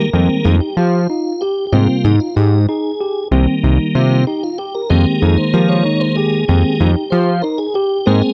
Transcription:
Already playing: tonewheel organ A#3 A#4
0.13 analog synth bass F2, tonewheel organ D#3 G3 G#3 A#3, tine electric piano C4
0.45 analog synth bass F2, tine electric piano D#4, tonewheel organ G#4
0.61 tonewheel organ G4
0.77 analog synth bass F3, tonewheel organ F4, tine electric piano G4
1.10 tine electric piano D#4
1.41 tonewheel organ G4, tine electric piano G4
1.67 tonewheel organ G4
1.72 analog synth bass G#2, tonewheel organ C3 G3 A#3 F4, tine electric piano C4
2.04 analog synth bass G#2, tonewheel organ D#4, tine electric piano D#4
2.20 tonewheel organ F4
2.36 analog synth bass G#2, tonewheel organ D#4, tine electric piano G4
2.69 tine electric piano D#4, tonewheel organ G#4
3.01 tine electric piano G4
3.31 analog synth bass C2, tonewheel organ D#3 G3 A#3, tine electric piano C4
3.64 analog synth bass C2, tine electric piano D#4
3.95 analog synth bass C3, tonewheel organ F4, tine electric piano G4
4.27 tine electric piano D#4, tonewheel organ G4
4.43 tonewheel organ F4
4.58 tonewheel organ G4, tine electric piano G4
4.75 tonewheel organ A#4
4.90 analog synth bass F2, tonewheel organ D#3 G#3 A#3 G4 C5, tine electric piano C4
5.06 tonewheel organ G4
5.21 analog synth bass F2, tine electric piano D#4, tonewheel organ G#4
5.37 tonewheel organ C5
5.54 analog synth bass F3, tine electric piano G4, tonewheel organ A#4
5.69 tonewheel organ C#5
5.85 tine electric piano D#4
6.00 tonewheel organ C5
6.16 tine electric piano G4, tonewheel organ G#4
6.48 analog synth bass F2, tonewheel organ D#3 G#3 A#3 G4, tine electric piano C4
6.80 analog synth bass F2, tine electric piano D#4, tonewheel organ G4
7.10 analog synth bass F3, tine electric piano G4, tonewheel organ C5
7.42 tine electric piano D#4, tonewheel organ A#4
7.58 tonewheel organ G#4
7.74 tonewheel organ G4, tine electric piano G4
8.06 analog synth bass G#2, tonewheel organ G#3 A#3 C4 A#4, tine electric piano C4
8.21 tonewheel organ G#4

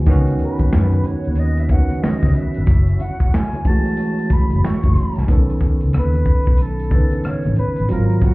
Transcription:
0.06 fingered electric bass C#2, tonewheel organ D#3 F#3 C#4 B4, tine electric piano D#3 B3 C#4, kick, closed hi-hat, muted conga, low conga
0.11 tine electric piano F#4
0.27 closed hi-hat
0.39 flute B4, closed hi-hat, muted conga, high conga
0.59 fingered electric bass D#2, kick, closed hi-hat
0.71 fingered electric bass F#2, finger snap, snare, muted conga
0.91 closed hi-hat, high conga
1.03 flute C#5, closed hi-hat, muted conga, low conga
1.24 fingered electric bass D#2, closed hi-hat
1.36 flute D#5, closed hi-hat
1.57 flute E5, closed hi-hat
1.68 tine electric piano D#3 B3, flute F#5, kick, closed hi-hat, high conga
1.73 tine electric piano C#4 F#4
1.89 closed hi-hat, high conga
2.02 flute D#5, finger snap, muted fingered electric bass stroke, snare, muted conga
2.21 fingered electric bass C#2, kick, snare, closed hi-hat, high conga
2.34 flute E5, closed hi-hat, muted conga, low conga
2.54 fingered electric bass G1, closed hi-hat
2.66 fingered electric bass F#1, tonewheel organ C#4 E4 F#4, kick, closed hi-hat, low conga
2.88 closed hi-hat
3.00 flute F#5, closed hi-hat, muted conga, high conga
3.20 fingered electric bass E1, kick, closed hi-hat
3.34 flute G#5, finger snap, snare
3.52 closed hi-hat, high conga
3.65 tine electric piano E3 G#3 A3, flute A5, kick, closed hi-hat, muted conga, low conga
3.69 tine electric piano F#4
3.85 closed hi-hat
3.97 closed hi-hat
4.18 closed hi-hat
4.30 flute B5, muted fingered electric bass stroke, kick, closed hi-hat, muted conga, high conga
4.50 fingered electric bass F#1, closed hi-hat, high conga
4.64 flute C#6, finger snap, snare
4.82 fingered electric bass F#1, kick, closed hi-hat, high conga
4.95 closed hi-hat, low conga
5.16 fingered electric bass C2, snare, closed hi-hat
5.27 fingered electric bass B1, tine electric piano D#3 B3 C#4, kick, closed hi-hat, muted conga, low conga
5.32 tine electric piano A4
5.50 closed hi-hat
5.61 kick, closed hi-hat, high conga
5.81 fingered electric bass C#2, closed hi-hat
5.93 fingered electric bass D#2, flute B4, cross-stick, closed hi-hat, muted conga
6.13 closed hi-hat, high conga
6.25 kick, closed hi-hat, low conga
6.46 fingered electric bass B1, kick, closed hi-hat
6.57 closed hi-hat, muted conga
6.62 flute A4
6.79 closed hi-hat
6.90 tine electric piano C#3 B3 C#4, kick, closed hi-hat, muted conga, high conga
6.95 tine electric piano D#3 B4
7.11 closed hi-hat, high conga
7.24 flute C#5, muted fingered electric bass stroke, cross-stick, closed hi-hat, muted conga
7.43 cross-stick, closed hi-hat, high conga
7.47 fingered electric bass A1
7.56 flute B4, closed hi-hat, muted conga, low conga
7.76 fingered electric bass A1, closed hi-hat
7.89 fingered electric bass G#1, tine electric piano F#3 C4 F4, flute A#4, closed hi-hat, low conga
7.93 tine electric piano A#4
8.10 closed hi-hat
8.21 flute F#4, kick, closed hi-hat, high conga

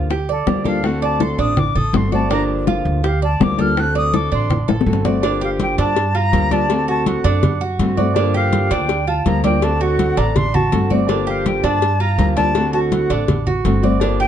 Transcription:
Already playing: upright bass D2, nylon-string guitar D4
0.10 cuban tres G4, muted nylon-string guitar stroke, high bongo, high conga
0.29 flute A4, cuban tres D5, high conga
0.46 upright bass D2, nylon-string guitar F3 A#3 D4 G4, flute D5, high bongo, low bongo, high conga
0.64 nylon-string guitar F3 A#3 D4 G4, cuban tres A4, flute F5, high conga
0.83 nylon-string guitar D3 A3 C4 F#4, flute F#5, high bongo, high conga
1.02 cuban tres D5, flute A5, high bongo, high conga
1.20 cuban tres A4, flute C6, high bongo, high conga
1.38 upright bass A1, cuban tres D4, flute D#6, high conga
1.56 flute D6, muted nylon-string guitar stroke, high bongo, high conga, low conga
1.75 upright bass A1, cuban tres A4, flute D#6, high bongo, high conga, low conga
1.93 upright bass G1, nylon-string guitar D3 A3 C4 F#4, flute C6, high bongo, low bongo, high conga
2.12 nylon-string guitar A3 C4 F#4, cuban tres D5, flute A5, high bongo, high conga
2.30 nylon-string guitar D3 F3 A#3 D4 G4, cuban tres D4, flute A#5, high bongo, high conga
2.49 high conga
2.67 cuban tres F4, high bongo, high conga
2.85 upright bass D2, high conga
3.03 cuban tres G4, flute F5, muted nylon-string guitar stroke, high bongo, high conga
3.22 cuban tres D5, flute A5, high conga
3.40 upright bass D2, nylon-string guitar F3 A#3 D4 G4, flute D6, high bongo, low bongo, high conga
3.58 nylon-string guitar F3 A#3 D4 G4, cuban tres A4, flute F6, high conga
3.76 nylon-string guitar D3 A3 C4 F#4, flute F#6, high bongo, high conga
3.95 cuban tres D5, flute D#6, high bongo, high conga
4.14 cuban tres A4, flute D6, high bongo, high conga
4.32 upright bass A1, cuban tres D4, flute C6, high conga
4.50 muted nylon-string guitar stroke, high bongo, high conga, low conga
4.68 upright bass A1, cuban tres A4, high bongo, high conga
4.81 low bongo
4.86 upright bass G1, nylon-string guitar D3 A3 C4 F#4, high conga
4.93 low bongo
5.05 nylon-string guitar A3 C4 F#4, cuban tres D5, low bongo, high conga
5.22 nylon-string guitar D3 F3 A#3 D4 G4, cuban tres D4, cowbell, high conga
5.41 cuban tres G4, flute F5, high conga
5.60 flute G5, cowbell, high conga
5.78 upright bass G2, cuban tres D4, flute A5, cowbell, high conga
5.96 muted nylon-string guitar stroke, cowbell, high conga
6.15 cuban tres F4, flute A#5, high conga
6.32 upright bass D2, nylon-string guitar F3 A#3 D4 G4, cowbell, high conga
6.51 nylon-string guitar F3 A#3 D4 G4, cuban tres D5, flute A5, cowbell, high conga
6.69 nylon-string guitar D3 A3 C4 F#4, cowbell, high conga
6.88 cuban tres F#4, flute A5, high conga
7.06 flute F#5, cowbell, high conga
7.24 upright bass F#2, cuban tres D4, cowbell, high conga
7.43 muted nylon-string guitar stroke, cowbell, high conga, low conga
7.61 cuban tres F#4, high conga
7.79 upright bass G2, nylon-string guitar D3 A3 C4 F#4, cowbell, high conga
7.97 nylon-string guitar A3 C4 F#4, cuban tres D5, high conga
8.15 nylon-string guitar D3 F3 A#3 D4 G4, cuban tres D4, cowbell, high conga
8.34 cuban tres G4, flute F5, high conga
8.53 cowbell, high conga
8.71 upright bass D2, cuban tres D4, flute G5, cowbell, high conga
8.89 muted nylon-string guitar stroke, cowbell, high conga
9.07 cuban tres F4, flute A5, high conga
9.26 upright bass D2, nylon-string guitar F3 A#3 D4 G4, flute A#5, cowbell, high conga
9.44 nylon-string guitar F3 A#3 D4 G4, cuban tres D5, flute G5, cowbell, high conga
9.61 nylon-string guitar D3 A3 C4 F#4, flute A5, cowbell, high conga
9.81 cuban tres F#4, flute F#5, high conga
9.99 cowbell, high conga
10.17 upright bass A1, cuban tres D4, flute A#5, cowbell, high conga
10.36 flute C6, muted nylon-string guitar stroke, cowbell, high conga, low conga
10.54 cuban tres F#4, flute A5, high conga, low conga
10.72 upright bass G1, nylon-string guitar D3 A3 C4 F#4, cowbell, high conga
10.90 nylon-string guitar A3 C4 F#4, cuban tres D5, high conga
11.08 nylon-string guitar D3 F3 A#3 D4 G4, cuban tres D4, cowbell, high conga
11.27 cuban tres G4, flute F5, high conga
11.46 flute G5, cowbell, high conga
11.63 upright bass G2, cuban tres D4, flute A5, cowbell, high conga
11.81 muted nylon-string guitar stroke, cowbell, high conga
12.00 cuban tres F4, flute A#5, high conga
12.18 upright bass D2, nylon-string guitar F3 A#3 D4 G4, cowbell, high conga
12.36 nylon-string guitar F3 A#3 D4 G4, cuban tres D5, flute A5, cowbell, high conga
12.55 nylon-string guitar D3 A3 C4 F#4, cowbell, high conga
12.73 cuban tres F#4, flute A5, high conga
12.92 flute F#5, cowbell, high conga
13.10 upright bass A1, cuban tres D4, cowbell, high conga
13.28 muted nylon-string guitar stroke, cowbell, high conga, low conga
13.47 cuban tres F#4, high conga, low conga
13.64 upright bass G1, nylon-string guitar D3 A3 C4 F#4, cowbell, high conga
13.82 nylon-string guitar A3 C4 F#4, cuban tres D5, high conga
14.00 nylon-string guitar D3 F3 A#3 D4 G4, cuban tres D4, cowbell, high conga
14.20 cuban tres G4, flute G5, high conga

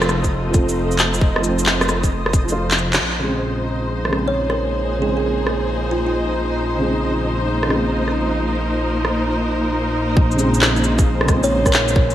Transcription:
Already playing: detuned saw bass F1, felt piano F3 A3 C4, string section A3 C4 F4 A4 C5, synth texture D#4 D#5
0.02 cross-stick, shaker
0.09 cross-stick, cabasa
0.24 kick, shaker
0.50 felt piano F3 A3
0.54 felt piano C4, kick, cabasa, shaker
0.69 shaker
0.91 shaker
0.99 clap, cabasa
1.14 shaker
1.21 kick
1.36 felt piano F3, cross-stick
1.44 felt piano A3, cabasa
1.48 felt piano C4
1.59 shaker
1.66 clap
1.81 cross-stick, shaker
1.89 cross-stick, cabasa
2.04 kick, shaker
2.26 cross-stick
2.33 kick, cabasa, shaker
2.44 felt piano F3
2.48 felt piano A3, shaker
2.52 felt piano F4
2.71 clap, shaker
2.78 cabasa
2.93 clap, shaker
3.00 detuned saw bass A#1, string section F3, synth texture D#4 D#5
3.19 felt piano C#3
3.23 felt piano G#3 C4
3.34 string section A#3
3.53 string section D#4
4.05 felt piano C#3, string section G#4, cross-stick
4.12 felt piano G#3, cross-stick
4.16 felt piano C4
4.28 kalimba C#5
4.50 kalimba A#4, cross-stick
4.98 felt piano C#3 G#3, kalimba G#4
5.06 felt piano C4
5.17 kalimba G#4
5.47 cross-stick
5.91 kalimba F4
6.06 kalimba F4
6.77 felt piano C#3 G#3
6.85 felt piano C4
7.63 felt piano C#3, string section A#4, cross-stick
7.70 felt piano G#3, cross-stick
7.74 felt piano C4
8.08 cross-stick
9.05 cross-stick
10.16 detuned saw bass A#1, synth texture F4 F5, kick
10.31 felt piano C#3, cabasa
10.38 felt piano G#3, cabasa
10.43 felt piano C4
10.54 shaker
10.61 clap
10.76 shaker
10.84 cabasa
10.99 kick, shaker
11.11 string section G#4
11.21 felt piano C#3, cross-stick
11.28 felt piano G#3, kick, cross-stick, cabasa, shaker
11.32 felt piano C4
11.43 kalimba C#5, shaker
11.66 kalimba A#4, kick, cross-stick, shaker
11.73 clap, cabasa
11.88 shaker
11.96 kick
12.10 cabasa

